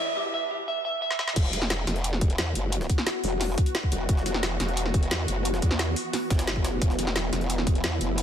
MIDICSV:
0, 0, Header, 1, 5, 480
1, 0, Start_track
1, 0, Time_signature, 4, 2, 24, 8
1, 0, Key_signature, 1, "minor"
1, 0, Tempo, 340909
1, 11584, End_track
2, 0, Start_track
2, 0, Title_t, "Clean electric guitar"
2, 0, Program_c, 0, 27
2, 0, Note_on_c, 0, 76, 97
2, 208, Note_off_c, 0, 76, 0
2, 237, Note_on_c, 0, 67, 80
2, 321, Note_off_c, 0, 67, 0
2, 477, Note_on_c, 0, 76, 101
2, 688, Note_off_c, 0, 76, 0
2, 716, Note_on_c, 0, 67, 74
2, 801, Note_off_c, 0, 67, 0
2, 957, Note_on_c, 0, 76, 101
2, 1168, Note_off_c, 0, 76, 0
2, 1197, Note_on_c, 0, 76, 107
2, 1408, Note_off_c, 0, 76, 0
2, 1437, Note_on_c, 0, 76, 107
2, 1648, Note_off_c, 0, 76, 0
2, 1677, Note_on_c, 0, 76, 112
2, 1888, Note_off_c, 0, 76, 0
2, 11584, End_track
3, 0, Start_track
3, 0, Title_t, "Synth drone"
3, 0, Program_c, 1, 95
3, 1917, Note_on_c, 1, 52, 92
3, 1917, Note_on_c, 1, 59, 84
3, 1917, Note_on_c, 1, 66, 101
3, 9565, Note_off_c, 1, 66, 0
3, 9597, Note_on_c, 1, 64, 99
3, 11584, Note_off_c, 1, 52, 0
3, 11584, Note_off_c, 1, 59, 0
3, 11584, Note_off_c, 1, 64, 0
3, 11584, End_track
4, 0, Start_track
4, 0, Title_t, "Wobble bass"
4, 0, Program_c, 2, 39
4, 1917, Note_on_c, 2, 28, 96
4, 2617, Note_off_c, 2, 28, 0
4, 2637, Note_on_c, 2, 28, 102
4, 3338, Note_off_c, 2, 28, 0
4, 3357, Note_on_c, 2, 40, 99
4, 3578, Note_off_c, 2, 40, 0
4, 3597, Note_on_c, 2, 30, 101
4, 4058, Note_off_c, 2, 30, 0
4, 4557, Note_on_c, 2, 28, 99
4, 5018, Note_off_c, 2, 28, 0
4, 5516, Note_on_c, 2, 28, 103
4, 5737, Note_off_c, 2, 28, 0
4, 5756, Note_on_c, 2, 28, 99
4, 6457, Note_off_c, 2, 28, 0
4, 6477, Note_on_c, 2, 28, 102
4, 7178, Note_off_c, 2, 28, 0
4, 7197, Note_on_c, 2, 40, 98
4, 7417, Note_off_c, 2, 40, 0
4, 7437, Note_on_c, 2, 30, 101
4, 7898, Note_off_c, 2, 30, 0
4, 7917, Note_on_c, 2, 40, 101
4, 8377, Note_off_c, 2, 40, 0
4, 8877, Note_on_c, 2, 31, 99
4, 9578, Note_off_c, 2, 31, 0
4, 9597, Note_on_c, 2, 28, 99
4, 10298, Note_off_c, 2, 28, 0
4, 10317, Note_on_c, 2, 28, 100
4, 11018, Note_off_c, 2, 28, 0
4, 11037, Note_on_c, 2, 40, 95
4, 11258, Note_off_c, 2, 40, 0
4, 11277, Note_on_c, 2, 30, 103
4, 11584, Note_off_c, 2, 30, 0
4, 11584, End_track
5, 0, Start_track
5, 0, Title_t, "Drums"
5, 1556, Note_on_c, 9, 38, 52
5, 1676, Note_off_c, 9, 38, 0
5, 1676, Note_on_c, 9, 38, 77
5, 1796, Note_off_c, 9, 38, 0
5, 1796, Note_on_c, 9, 38, 84
5, 1916, Note_on_c, 9, 42, 91
5, 1917, Note_off_c, 9, 42, 0
5, 1917, Note_on_c, 9, 36, 119
5, 1917, Note_on_c, 9, 42, 102
5, 1917, Note_on_c, 9, 49, 110
5, 1937, Note_off_c, 9, 38, 0
5, 2036, Note_on_c, 9, 38, 40
5, 2057, Note_off_c, 9, 42, 0
5, 2057, Note_off_c, 9, 49, 0
5, 2058, Note_off_c, 9, 36, 0
5, 2157, Note_off_c, 9, 38, 0
5, 2157, Note_on_c, 9, 38, 54
5, 2157, Note_on_c, 9, 42, 69
5, 2277, Note_on_c, 9, 40, 59
5, 2297, Note_off_c, 9, 38, 0
5, 2298, Note_off_c, 9, 42, 0
5, 2396, Note_on_c, 9, 38, 118
5, 2396, Note_on_c, 9, 42, 86
5, 2397, Note_off_c, 9, 38, 0
5, 2397, Note_off_c, 9, 42, 0
5, 2397, Note_on_c, 9, 38, 118
5, 2397, Note_on_c, 9, 42, 93
5, 2417, Note_off_c, 9, 40, 0
5, 2538, Note_off_c, 9, 38, 0
5, 2538, Note_off_c, 9, 42, 0
5, 2636, Note_on_c, 9, 42, 69
5, 2637, Note_off_c, 9, 42, 0
5, 2637, Note_on_c, 9, 40, 50
5, 2637, Note_on_c, 9, 42, 67
5, 2756, Note_off_c, 9, 42, 0
5, 2756, Note_on_c, 9, 42, 45
5, 2777, Note_off_c, 9, 40, 0
5, 2877, Note_off_c, 9, 42, 0
5, 2877, Note_on_c, 9, 42, 96
5, 2997, Note_on_c, 9, 40, 38
5, 3017, Note_off_c, 9, 42, 0
5, 3116, Note_on_c, 9, 42, 68
5, 3117, Note_off_c, 9, 42, 0
5, 3117, Note_on_c, 9, 36, 110
5, 3117, Note_on_c, 9, 42, 69
5, 3138, Note_off_c, 9, 40, 0
5, 3237, Note_off_c, 9, 42, 0
5, 3237, Note_on_c, 9, 42, 39
5, 3258, Note_off_c, 9, 36, 0
5, 3356, Note_off_c, 9, 42, 0
5, 3356, Note_on_c, 9, 38, 115
5, 3356, Note_on_c, 9, 42, 86
5, 3357, Note_off_c, 9, 38, 0
5, 3357, Note_off_c, 9, 42, 0
5, 3357, Note_on_c, 9, 38, 120
5, 3357, Note_on_c, 9, 42, 92
5, 3497, Note_off_c, 9, 38, 0
5, 3497, Note_off_c, 9, 42, 0
5, 3596, Note_on_c, 9, 42, 69
5, 3737, Note_off_c, 9, 42, 0
5, 3836, Note_on_c, 9, 42, 101
5, 3956, Note_on_c, 9, 38, 56
5, 3977, Note_off_c, 9, 42, 0
5, 4077, Note_on_c, 9, 36, 62
5, 4077, Note_on_c, 9, 42, 71
5, 4097, Note_off_c, 9, 38, 0
5, 4197, Note_on_c, 9, 40, 60
5, 4217, Note_off_c, 9, 36, 0
5, 4217, Note_off_c, 9, 42, 0
5, 4316, Note_on_c, 9, 38, 116
5, 4316, Note_on_c, 9, 42, 89
5, 4317, Note_off_c, 9, 38, 0
5, 4317, Note_off_c, 9, 42, 0
5, 4317, Note_on_c, 9, 38, 119
5, 4317, Note_on_c, 9, 42, 97
5, 4337, Note_off_c, 9, 40, 0
5, 4457, Note_off_c, 9, 38, 0
5, 4457, Note_off_c, 9, 42, 0
5, 4556, Note_on_c, 9, 42, 71
5, 4557, Note_on_c, 9, 46, 75
5, 4697, Note_off_c, 9, 42, 0
5, 4697, Note_off_c, 9, 46, 0
5, 4796, Note_on_c, 9, 40, 51
5, 4796, Note_on_c, 9, 42, 93
5, 4796, Note_on_c, 9, 46, 84
5, 4937, Note_off_c, 9, 40, 0
5, 4937, Note_off_c, 9, 42, 0
5, 4937, Note_off_c, 9, 46, 0
5, 5036, Note_on_c, 9, 36, 114
5, 5037, Note_on_c, 9, 42, 71
5, 5157, Note_off_c, 9, 42, 0
5, 5157, Note_on_c, 9, 42, 48
5, 5177, Note_off_c, 9, 36, 0
5, 5277, Note_off_c, 9, 42, 0
5, 5277, Note_on_c, 9, 38, 123
5, 5277, Note_on_c, 9, 42, 93
5, 5397, Note_on_c, 9, 36, 62
5, 5418, Note_off_c, 9, 38, 0
5, 5418, Note_off_c, 9, 42, 0
5, 5516, Note_on_c, 9, 42, 74
5, 5517, Note_off_c, 9, 42, 0
5, 5517, Note_on_c, 9, 42, 66
5, 5537, Note_off_c, 9, 36, 0
5, 5658, Note_off_c, 9, 42, 0
5, 5756, Note_on_c, 9, 36, 126
5, 5756, Note_on_c, 9, 42, 90
5, 5757, Note_off_c, 9, 42, 0
5, 5757, Note_on_c, 9, 42, 91
5, 5877, Note_on_c, 9, 38, 41
5, 5897, Note_off_c, 9, 36, 0
5, 5898, Note_off_c, 9, 42, 0
5, 5997, Note_off_c, 9, 38, 0
5, 5997, Note_on_c, 9, 38, 54
5, 5997, Note_on_c, 9, 42, 69
5, 6117, Note_on_c, 9, 40, 59
5, 6138, Note_off_c, 9, 38, 0
5, 6138, Note_off_c, 9, 42, 0
5, 6237, Note_on_c, 9, 38, 122
5, 6237, Note_on_c, 9, 42, 90
5, 6258, Note_off_c, 9, 40, 0
5, 6378, Note_off_c, 9, 38, 0
5, 6378, Note_off_c, 9, 42, 0
5, 6477, Note_on_c, 9, 40, 50
5, 6477, Note_on_c, 9, 42, 70
5, 6597, Note_off_c, 9, 42, 0
5, 6597, Note_on_c, 9, 42, 44
5, 6618, Note_off_c, 9, 40, 0
5, 6717, Note_off_c, 9, 42, 0
5, 6717, Note_on_c, 9, 42, 90
5, 6837, Note_on_c, 9, 40, 37
5, 6858, Note_off_c, 9, 42, 0
5, 6957, Note_on_c, 9, 36, 115
5, 6957, Note_on_c, 9, 42, 66
5, 6978, Note_off_c, 9, 40, 0
5, 7077, Note_off_c, 9, 42, 0
5, 7077, Note_on_c, 9, 42, 37
5, 7097, Note_off_c, 9, 36, 0
5, 7196, Note_off_c, 9, 42, 0
5, 7196, Note_on_c, 9, 38, 121
5, 7196, Note_on_c, 9, 42, 89
5, 7197, Note_off_c, 9, 38, 0
5, 7197, Note_off_c, 9, 42, 0
5, 7197, Note_on_c, 9, 38, 125
5, 7197, Note_on_c, 9, 42, 91
5, 7338, Note_off_c, 9, 38, 0
5, 7338, Note_off_c, 9, 42, 0
5, 7437, Note_on_c, 9, 42, 63
5, 7578, Note_off_c, 9, 42, 0
5, 7677, Note_on_c, 9, 42, 88
5, 7797, Note_on_c, 9, 38, 54
5, 7818, Note_off_c, 9, 42, 0
5, 7916, Note_on_c, 9, 36, 65
5, 7917, Note_on_c, 9, 42, 70
5, 7938, Note_off_c, 9, 38, 0
5, 8037, Note_on_c, 9, 40, 58
5, 8057, Note_off_c, 9, 36, 0
5, 8058, Note_off_c, 9, 42, 0
5, 8156, Note_on_c, 9, 38, 124
5, 8156, Note_on_c, 9, 42, 87
5, 8157, Note_off_c, 9, 38, 0
5, 8157, Note_off_c, 9, 42, 0
5, 8157, Note_on_c, 9, 38, 115
5, 8157, Note_on_c, 9, 42, 86
5, 8177, Note_off_c, 9, 40, 0
5, 8297, Note_off_c, 9, 38, 0
5, 8297, Note_off_c, 9, 42, 0
5, 8397, Note_on_c, 9, 42, 71
5, 8397, Note_on_c, 9, 46, 84
5, 8538, Note_off_c, 9, 42, 0
5, 8538, Note_off_c, 9, 46, 0
5, 8637, Note_on_c, 9, 40, 48
5, 8637, Note_on_c, 9, 42, 88
5, 8637, Note_on_c, 9, 46, 83
5, 8778, Note_off_c, 9, 40, 0
5, 8778, Note_off_c, 9, 42, 0
5, 8778, Note_off_c, 9, 46, 0
5, 8877, Note_on_c, 9, 36, 112
5, 8877, Note_on_c, 9, 38, 112
5, 8877, Note_on_c, 9, 42, 80
5, 8997, Note_off_c, 9, 38, 0
5, 8997, Note_off_c, 9, 42, 0
5, 8997, Note_on_c, 9, 38, 110
5, 8997, Note_on_c, 9, 42, 36
5, 9017, Note_off_c, 9, 36, 0
5, 9117, Note_off_c, 9, 38, 0
5, 9117, Note_off_c, 9, 42, 0
5, 9117, Note_on_c, 9, 38, 120
5, 9117, Note_on_c, 9, 42, 92
5, 9237, Note_on_c, 9, 36, 65
5, 9258, Note_off_c, 9, 38, 0
5, 9258, Note_off_c, 9, 42, 0
5, 9357, Note_on_c, 9, 38, 113
5, 9357, Note_on_c, 9, 42, 62
5, 9378, Note_off_c, 9, 36, 0
5, 9498, Note_off_c, 9, 38, 0
5, 9498, Note_off_c, 9, 42, 0
5, 9597, Note_on_c, 9, 36, 114
5, 9597, Note_on_c, 9, 42, 93
5, 9717, Note_on_c, 9, 38, 40
5, 9738, Note_off_c, 9, 36, 0
5, 9738, Note_off_c, 9, 42, 0
5, 9837, Note_off_c, 9, 38, 0
5, 9837, Note_on_c, 9, 38, 53
5, 9837, Note_on_c, 9, 42, 72
5, 9957, Note_on_c, 9, 40, 54
5, 9977, Note_off_c, 9, 38, 0
5, 9977, Note_off_c, 9, 42, 0
5, 10076, Note_on_c, 9, 38, 124
5, 10076, Note_on_c, 9, 42, 92
5, 10097, Note_off_c, 9, 40, 0
5, 10217, Note_off_c, 9, 38, 0
5, 10217, Note_off_c, 9, 42, 0
5, 10316, Note_on_c, 9, 40, 46
5, 10316, Note_on_c, 9, 42, 63
5, 10436, Note_off_c, 9, 42, 0
5, 10436, Note_on_c, 9, 42, 45
5, 10457, Note_off_c, 9, 40, 0
5, 10556, Note_off_c, 9, 42, 0
5, 10556, Note_on_c, 9, 42, 95
5, 10557, Note_off_c, 9, 42, 0
5, 10557, Note_on_c, 9, 42, 89
5, 10677, Note_on_c, 9, 40, 35
5, 10697, Note_off_c, 9, 42, 0
5, 10797, Note_on_c, 9, 36, 111
5, 10797, Note_on_c, 9, 42, 67
5, 10817, Note_off_c, 9, 40, 0
5, 10917, Note_off_c, 9, 42, 0
5, 10917, Note_on_c, 9, 42, 36
5, 10937, Note_off_c, 9, 36, 0
5, 11036, Note_off_c, 9, 42, 0
5, 11036, Note_on_c, 9, 38, 119
5, 11036, Note_on_c, 9, 42, 86
5, 11037, Note_off_c, 9, 38, 0
5, 11037, Note_off_c, 9, 42, 0
5, 11037, Note_on_c, 9, 38, 117
5, 11037, Note_on_c, 9, 42, 86
5, 11178, Note_off_c, 9, 38, 0
5, 11178, Note_off_c, 9, 42, 0
5, 11276, Note_on_c, 9, 42, 70
5, 11277, Note_off_c, 9, 42, 0
5, 11277, Note_on_c, 9, 42, 62
5, 11417, Note_off_c, 9, 42, 0
5, 11516, Note_on_c, 9, 42, 98
5, 11584, Note_off_c, 9, 42, 0
5, 11584, End_track
0, 0, End_of_file